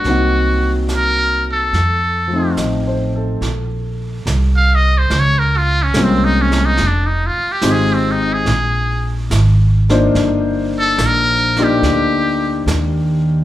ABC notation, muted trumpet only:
X:1
M:4/4
L:1/16
Q:"Swing" 1/4=71
K:Fphr
V:1 name="Muted trumpet"
G2 z2 B2 =A6 z4 | z4 z f e c d B F D C E D E | =D E F =G A C E A4 z4 z | z2 =A2 B2 =G6 z4 |]